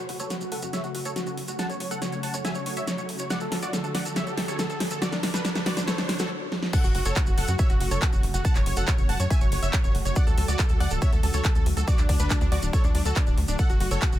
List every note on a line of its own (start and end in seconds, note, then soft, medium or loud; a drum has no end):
0.00 3.27 C#3 medium
0.00 6.26 F#3 medium
0.00 6.26 A3 medium
0.00 6.26 F#4 medium
0.00 riser medium
0.09 0.16 F#1 loud
0.09 0.18 F#4 medium
0.09 open hi-hat loud
0.20 0.27 F#1 medium
0.20 0.29 A4 medium
0.20 0.29 C#5 medium
0.20 closed hi-hat medium
0.20 maracas medium
0.30 0.40 F#4 medium
0.30 snare soft
0.30 closed hi-hat medium
0.30 maracas medium
0.41 0.49 F#1 medium
0.41 0.51 F#4 medium
0.41 closed hi-hat soft
0.41 maracas soft
0.52 0.59 F#1 medium
0.52 0.61 A4 medium
0.52 0.61 F#5 medium
0.52 open hi-hat loud
0.62 0.70 F#2 medium
0.62 0.72 F#4 medium
0.62 closed hi-hat medium
0.62 maracas medium
0.73 0.83 C#5 medium
0.73 0.83 E5 medium
0.73 snare soft
0.73 closed hi-hat medium
0.73 maracas medium
0.84 0.91 F#1 medium
0.84 0.93 F#4 medium
0.84 closed hi-hat soft
0.84 maracas soft
0.95 1.02 F#1 loud
0.95 1.04 F#4 medium
0.95 open hi-hat loud
1.05 1.13 F#1 medium
1.05 1.15 A4 medium
1.05 1.15 C#5 medium
1.05 closed hi-hat medium
1.05 maracas medium
1.16 1.25 F#4 medium
1.16 snare medium
1.16 closed hi-hat soft
1.16 maracas medium
1.26 1.34 F#1 medium
1.26 1.36 F#4 medium
1.26 closed hi-hat soft
1.26 maracas soft
1.37 1.45 F#1 loud
1.37 open hi-hat loud
1.48 1.56 F#1 medium
1.48 1.58 F#4 medium
1.48 closed hi-hat medium
1.48 maracas medium
1.59 1.68 F#5 medium
1.59 1.68 A5 loud
1.59 snare medium
1.59 closed hi-hat medium
1.59 maracas medium
1.70 1.77 F#1 medium
1.70 1.79 C#5 medium
1.70 closed hi-hat soft
1.70 maracas soft
1.80 1.88 F#1 loud
1.80 1.90 C#5 medium
1.80 open hi-hat loud
1.91 1.99 F#1 medium
1.91 2.00 A4 medium
1.91 2.00 F#5 loud
1.91 closed hi-hat medium
1.91 maracas medium
2.02 2.11 C#5 medium
2.02 snare medium
2.02 closed hi-hat medium
2.02 maracas medium
2.12 2.20 F#1 medium
2.12 2.22 C#5 medium
2.12 closed hi-hat soft
2.12 maracas soft
2.23 2.31 F#1 medium
2.23 2.33 F#5 medium
2.23 2.33 A5 medium
2.23 open hi-hat loud
2.34 2.42 F#2 medium
2.34 2.43 C#5 medium
2.34 closed hi-hat medium
2.34 maracas medium
2.45 2.54 E5 medium
2.45 2.54 G#5 medium
2.45 snare medium
2.45 closed hi-hat medium
2.45 maracas medium
2.55 2.63 F#1 medium
2.55 2.65 C#5 medium
2.55 closed hi-hat soft
2.55 maracas soft
2.66 2.74 F#1 loud
2.66 2.75 C#5 medium
2.66 open hi-hat loud
2.77 2.84 F#1 medium
2.77 2.86 C#5 medium
2.77 2.86 E5 medium
2.77 closed hi-hat medium
2.77 maracas medium
2.87 2.97 C#5 medium
2.87 snare medium
2.87 closed hi-hat soft
2.87 maracas medium
2.98 3.06 F#1 medium
2.98 3.08 C#5 medium
2.98 closed hi-hat soft
2.98 maracas soft
3.09 3.17 F#1 loud
3.09 open hi-hat loud
3.19 3.27 F#1 medium
3.19 3.29 C#5 medium
3.19 closed hi-hat medium
3.19 maracas medium
3.30 6.27 D3 medium
3.30 3.40 D5 medium
3.30 3.40 F#5 loud
3.30 snare medium
3.30 closed hi-hat soft
3.30 maracas medium
3.40 3.49 D2 medium
3.40 3.50 A4 medium
3.40 closed hi-hat soft
3.40 maracas soft
3.52 3.59 D2 loud
3.52 3.61 A4 medium
3.52 snare medium
3.52 open hi-hat loud
3.62 3.70 D2 medium
3.62 3.72 F#4 medium
3.62 3.72 D5 loud
3.62 closed hi-hat medium
3.62 maracas medium
3.73 3.83 A4 medium
3.73 snare medium
3.73 closed hi-hat medium
3.73 maracas medium
3.84 3.91 D2 medium
3.84 3.93 A4 medium
3.84 closed hi-hat soft
3.84 maracas soft
3.95 4.02 D2 medium
3.95 4.04 D5 medium
3.95 4.04 F#5 medium
3.95 snare medium
3.95 open hi-hat loud
4.05 4.13 D1 medium
4.05 4.15 A4 medium
4.05 closed hi-hat medium
4.05 maracas medium
4.16 4.25 C#5 medium
4.16 4.25 E5 medium
4.16 snare medium
4.16 closed hi-hat medium
4.16 maracas medium
4.27 4.34 D2 medium
4.27 4.36 A4 medium
4.27 closed hi-hat soft
4.27 maracas soft
4.37 4.45 D2 loud
4.37 4.47 A4 medium
4.37 snare medium
4.37 open hi-hat loud
4.48 4.56 D2 medium
4.48 4.58 A4 medium
4.48 4.58 C#5 medium
4.48 closed hi-hat medium
4.48 maracas medium
4.59 4.68 A4 medium
4.59 snare medium
4.59 closed hi-hat soft
4.59 maracas medium
4.70 4.77 D2 medium
4.70 4.79 A4 medium
4.70 closed hi-hat soft
4.70 maracas soft
4.80 4.88 D2 loud
4.80 snare medium
4.80 open hi-hat loud
4.91 4.99 D2 medium
4.91 5.01 A4 medium
4.91 closed hi-hat medium
4.91 maracas medium
5.02 5.11 F#4 medium
5.02 5.11 D5 loud
5.02 snare medium
5.02 closed hi-hat medium
5.02 maracas medium
5.12 5.20 D2 medium
5.12 5.22 D4 medium
5.12 snare medium
5.12 closed hi-hat soft
5.12 maracas soft
5.23 5.31 D2 loud
5.23 5.33 D4 medium
5.23 snare loud
5.23 open hi-hat loud
5.34 5.42 D2 medium
5.34 5.43 D4 medium
5.34 5.43 B4 loud
5.34 snare medium
5.34 closed hi-hat medium
5.34 maracas medium
5.45 5.54 D4 medium
5.45 snare medium
5.45 closed hi-hat soft
5.45 maracas medium
5.55 5.63 D2 medium
5.55 5.65 D4 medium
5.55 snare medium
5.55 closed hi-hat soft
5.55 maracas soft
5.66 5.74 D2 loud
5.66 5.76 F#4 medium
5.66 5.76 D5 medium
5.66 snare loud
5.66 open hi-hat loud
5.77 5.84 D1 medium
5.77 5.86 D4 medium
5.77 snare medium
5.77 closed hi-hat medium
5.77 maracas medium
5.88 5.97 A4 medium
5.88 5.97 C#5 medium
5.88 snare loud
5.88 closed hi-hat medium
5.88 maracas medium
5.98 6.06 D2 medium
5.98 6.08 D4 medium
5.98 snare medium
5.98 closed hi-hat soft
5.98 maracas soft
6.09 6.16 D2 loud
6.09 6.18 D4 medium
6.09 snare loud
6.09 open hi-hat loud
6.19 6.27 D2 medium
6.19 6.29 F#4 medium
6.19 6.29 A4 medium
6.19 snare medium
6.19 closed hi-hat medium
6.19 maracas medium
6.52 snare medium
6.63 snare medium
6.73 10.13 C#3 medium
6.73 14.19 F#3 medium
6.73 14.19 A3 medium
6.73 13.55 F#4 medium
6.73 6.83 A4 medium
6.73 6.83 F#5 loud
6.73 6.83 F#6 loud
6.73 kick loud
6.73 closed hi-hat medium
6.73 crash loud
6.73 maracas medium
6.84 6.92 F#1 medium
6.84 6.93 F#4 medium
6.84 6.93 F#5 medium
6.84 closed hi-hat soft
6.84 maracas soft
6.95 7.02 F#1 loud
6.95 7.04 F#4 medium
6.95 7.04 F#5 medium
6.95 open hi-hat loud
7.05 7.13 F#1 medium
7.05 7.15 A4 medium
7.05 7.15 C#5 medium
7.05 7.15 C#6 medium
7.05 closed hi-hat medium
7.05 maracas medium
7.16 7.26 F#4 medium
7.16 7.26 F#5 medium
7.16 kick loud
7.16 clap loud
7.16 closed hi-hat medium
7.16 maracas medium
7.26 7.34 F#1 medium
7.26 7.36 F#4 medium
7.26 7.36 F#5 medium
7.26 closed hi-hat soft
7.26 maracas soft
7.38 7.45 F#1 loud
7.38 7.47 A4 medium
7.38 7.47 F#5 medium
7.38 7.47 F#6 loud
7.38 open hi-hat loud
7.48 7.56 F#2 medium
7.48 7.58 F#4 medium
7.48 7.58 F#5 medium
7.48 closed hi-hat medium
7.48 maracas medium
7.59 7.68 C#5 medium
7.59 7.68 E5 medium
7.59 7.68 E6 medium
7.59 kick loud
7.59 closed hi-hat medium
7.59 maracas medium
7.69 7.77 F#1 medium
7.69 7.79 F#4 medium
7.69 7.79 F#5 medium
7.69 closed hi-hat soft
7.69 maracas soft
7.80 7.88 F#1 loud
7.80 7.90 F#4 medium
7.80 7.90 F#5 medium
7.80 open hi-hat loud
7.91 7.99 F#1 medium
7.91 8.01 A4 medium
7.91 8.01 C#5 medium
7.91 8.00 C#6 medium
7.91 closed hi-hat medium
7.91 maracas medium
8.02 8.11 F#4 medium
8.02 8.11 F#5 medium
8.02 kick loud
8.02 clap loud
8.02 closed hi-hat medium
8.02 maracas medium
8.13 8.20 F#1 medium
8.13 8.22 F#4 medium
8.13 8.22 F#5 medium
8.13 closed hi-hat soft
8.13 maracas soft
8.23 8.31 F#1 loud
8.23 open hi-hat loud
8.34 8.42 F#1 medium
8.34 8.43 F#4 medium
8.34 8.43 F#5 medium
8.34 closed hi-hat medium
8.34 maracas medium
8.45 8.54 F#5 medium
8.45 8.54 A5 loud
8.45 8.54 A6 loud
8.45 kick loud
8.45 closed hi-hat medium
8.45 maracas medium
8.55 8.63 F#1 medium
8.55 8.65 C#5 medium
8.55 8.65 C#6 medium
8.55 clap soft
8.55 closed hi-hat soft
8.55 maracas soft
8.66 8.74 F#1 loud
8.66 8.76 C#5 medium
8.66 8.76 C#6 medium
8.66 open hi-hat loud
8.76 8.84 F#1 medium
8.76 8.86 A4 medium
8.76 8.86 F#5 loud
8.76 8.86 F#6 loud
8.76 closed hi-hat medium
8.76 maracas medium
8.88 8.97 C#5 medium
8.88 8.97 C#6 medium
8.88 kick loud
8.88 clap loud
8.88 closed hi-hat medium
8.88 maracas medium
8.98 9.06 F#1 medium
8.98 9.08 C#5 medium
8.98 9.08 C#6 medium
8.98 closed hi-hat soft
8.98 maracas soft
9.09 9.16 F#1 loud
9.09 9.18 F#5 medium
9.09 9.18 A5 medium
9.09 9.18 A6 medium
9.09 open hi-hat loud
9.20 9.27 F#2 loud
9.20 9.29 C#5 medium
9.20 9.29 C#6 medium
9.20 closed hi-hat medium
9.20 maracas medium
9.30 9.40 E5 medium
9.30 9.40 G#5 loud
9.30 9.40 G#6 medium
9.30 kick loud
9.30 closed hi-hat medium
9.30 maracas medium
9.41 9.49 F#1 medium
9.41 9.50 C#5 medium
9.41 9.51 C#6 medium
9.41 closed hi-hat soft
9.41 maracas soft
9.52 9.59 F#1 loud
9.52 9.61 C#5 medium
9.52 9.61 C#6 medium
9.52 open hi-hat loud
9.62 9.70 F#1 medium
9.62 9.72 C#5 medium
9.62 9.72 E5 medium
9.62 9.72 E6 medium
9.62 closed hi-hat medium
9.62 maracas medium
9.73 9.83 C#5 medium
9.73 9.83 C#6 medium
9.73 kick loud
9.73 clap loud
9.73 closed hi-hat medium
9.73 maracas medium
9.84 9.92 F#1 medium
9.84 9.93 C#5 medium
9.84 9.93 C#6 medium
9.84 closed hi-hat soft
9.84 maracas soft
9.95 10.02 F#1 loud
9.95 open hi-hat loud
10.05 10.13 F#1 medium
10.05 10.15 C#5 medium
10.05 10.15 C#6 medium
10.05 closed hi-hat medium
10.05 maracas medium
10.16 13.56 D3 medium
10.16 10.25 D5 medium
10.16 10.26 F#5 loud
10.16 10.26 F#6 loud
10.16 kick loud
10.16 closed hi-hat medium
10.16 maracas medium
10.27 10.34 D2 medium
10.27 10.36 A4 medium
10.27 10.36 A5 medium
10.27 closed hi-hat soft
10.27 maracas soft
10.38 10.45 D2 loud
10.38 10.47 A4 medium
10.38 10.47 A5 medium
10.38 open hi-hat loud
10.48 10.56 D2 medium
10.48 10.58 F#4 medium
10.48 10.58 D5 loud
10.48 10.58 D6 medium
10.48 closed hi-hat medium
10.48 maracas medium
10.59 10.68 A4 medium
10.59 10.68 A5 medium
10.59 kick loud
10.59 clap loud
10.59 closed hi-hat medium
10.59 maracas medium
10.69 10.77 D2 medium
10.69 10.79 A4 medium
10.69 10.79 A5 medium
10.69 closed hi-hat soft
10.69 maracas soft
10.80 10.88 D2 loud
10.80 10.90 D5 medium
10.80 10.90 F#5 medium
10.80 10.90 F#6 medium
10.80 open hi-hat loud
10.90 10.99 D1 medium
10.90 11.00 A4 medium
10.90 11.00 A5 medium
10.90 closed hi-hat medium
10.90 maracas medium
11.02 11.11 C#5 medium
11.02 11.11 E5 medium
11.02 11.11 E6 loud
11.02 kick loud
11.02 closed hi-hat medium
11.02 maracas medium
11.13 11.20 D2 medium
11.13 11.22 A4 medium
11.13 11.22 A5 medium
11.13 closed hi-hat soft
11.13 maracas soft
11.23 11.31 D2 loud
11.23 11.33 A4 medium
11.23 11.33 A5 medium
11.23 open hi-hat loud
11.33 11.41 D2 medium
11.33 11.43 A4 medium
11.33 11.43 C#5 medium
11.33 11.43 C#6 loud
11.33 closed hi-hat medium
11.33 maracas medium
11.44 11.54 A4 medium
11.44 11.54 A5 medium
11.44 kick loud
11.44 clap loud
11.44 closed hi-hat medium
11.44 maracas medium
11.55 11.63 D2 medium
11.55 11.65 A4 medium
11.55 11.65 A5 medium
11.55 closed hi-hat soft
11.55 maracas soft
11.66 11.74 D2 loud
11.66 open hi-hat loud
11.77 11.84 D2 medium
11.77 11.86 A4 medium
11.77 11.86 A5 medium
11.77 closed hi-hat medium
11.77 maracas medium
11.88 11.97 F#4 medium
11.88 11.97 D5 loud
11.88 11.97 D6 loud
11.88 kick loud
11.88 closed hi-hat soft
11.88 maracas medium
11.98 12.06 D2 medium
11.98 12.08 D4 medium
11.98 12.08 D5 medium
11.98 clap soft
11.98 closed hi-hat soft
11.98 maracas soft
12.09 12.16 D2 loud
12.09 12.18 D4 medium
12.09 12.18 D5 medium
12.09 kick medium
12.09 open hi-hat loud
12.19 12.27 D2 loud
12.19 12.29 D4 medium
12.19 12.29 B4 loud
12.19 12.29 B5 medium
12.19 closed hi-hat medium
12.19 maracas medium
12.30 12.40 D4 medium
12.30 12.40 D5 medium
12.30 kick loud
12.30 clap loud
12.30 closed hi-hat soft
12.30 maracas medium
12.41 12.49 D2 medium
12.41 12.50 D4 medium
12.41 12.50 D5 medium
12.41 closed hi-hat soft
12.41 maracas soft
12.52 12.59 D2 loud
12.52 12.61 F#4 medium
12.52 12.61 D5 medium
12.52 12.61 D6 medium
12.52 open hi-hat loud
12.62 12.70 D1 medium
12.62 12.72 D4 medium
12.62 12.72 D5 medium
12.62 closed hi-hat soft
12.62 maracas medium
12.73 12.83 A4 medium
12.73 12.83 C#5 medium
12.73 12.83 C#6 medium
12.73 kick loud
12.73 closed hi-hat medium
12.73 maracas medium
12.84 12.91 D2 medium
12.84 12.93 D4 medium
12.84 12.93 D5 medium
12.84 closed hi-hat soft
12.84 maracas soft
12.95 13.02 D2 loud
12.95 13.04 D4 medium
12.95 13.04 D5 medium
12.95 open hi-hat loud
13.05 13.13 D2 medium
13.05 13.15 F#4 medium
13.05 13.15 A4 medium
13.05 13.15 A5 loud
13.05 closed hi-hat medium
13.05 maracas medium
13.16 13.26 D4 medium
13.16 13.26 D5 medium
13.16 kick loud
13.16 clap loud
13.16 closed hi-hat soft
13.16 maracas medium
13.27 13.34 D1 medium
13.27 13.36 D4 medium
13.27 13.36 D5 medium
13.27 closed hi-hat soft
13.27 maracas soft
13.38 13.45 D2 loud
13.38 open hi-hat loud
13.48 13.56 D1 medium
13.48 13.58 D4 medium
13.48 13.58 D5 medium
13.48 closed hi-hat soft
13.48 maracas medium
13.59 14.19 C#3 medium
13.59 14.19 F#4 medium
13.59 13.68 A4 medium
13.59 13.68 F#5 loud
13.59 13.68 F#6 loud
13.59 kick loud
13.59 closed hi-hat soft
13.59 maracas medium
13.70 13.77 F#1 medium
13.70 13.79 F#4 medium
13.70 13.79 F#5 medium
13.70 closed hi-hat soft
13.70 maracas soft
13.80 13.88 F#1 loud
13.80 13.90 F#4 medium
13.80 13.90 F#5 medium
13.80 open hi-hat loud
13.91 13.99 F#1 loud
13.91 14.01 A4 medium
13.91 14.01 C#5 loud
13.91 14.01 C#6 medium
13.91 closed hi-hat medium
13.91 maracas medium
14.02 14.11 F#4 medium
14.02 14.11 F#5 medium
14.02 kick loud
14.02 clap loud
14.02 closed hi-hat medium
14.02 maracas medium
14.12 14.19 F#1 medium
14.12 14.19 F#4 medium
14.12 14.19 F#5 medium
14.12 closed hi-hat soft
14.12 maracas soft